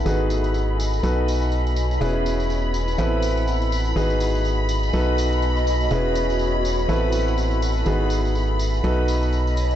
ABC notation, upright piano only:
X:1
M:4/4
L:1/8
Q:"Swing 16ths" 1/4=123
K:E
V:1 name="Upright piano"
[B,DFGB]4 [B,DFAB]4 | [B,CEGB]4 [B,=CEAB]4 | [B,DFGB]4 [B,DFAB]4 | [B,CEGB]4 [B,=CEAB]4 |
[B,DFGB]4 [B,DFAB]4 |]